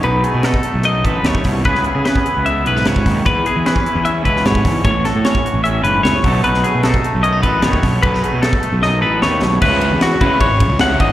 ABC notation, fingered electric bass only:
X:1
M:4/4
L:1/16
Q:1/4=151
K:Bmix
V:1 name="Fingered electric bass" clef=bass
B,,,2 z B,,2 z2 B,,,3 A,,,2 D,,2 =C,,2 | C,,2 z C,2 z2 C,,3 B,,,2 C,,2 D,,2 | E,,2 z E,2 z2 E,,3 C,,2 G,,2 E,,2 | A,,,2 z A,,2 z2 A,,,3 F,,,2 C,,2 B,,,2 |
B,,,2 z B,,2 z2 B,,,3 A,,,2 D,,2 B,,,2 | B,,,2 z B,,2 z2 B,,,3 A,,,2 D,,2 B,,,2 | C,,3 E,,2 z C, z G,,,3 C,,3 G,,, z |]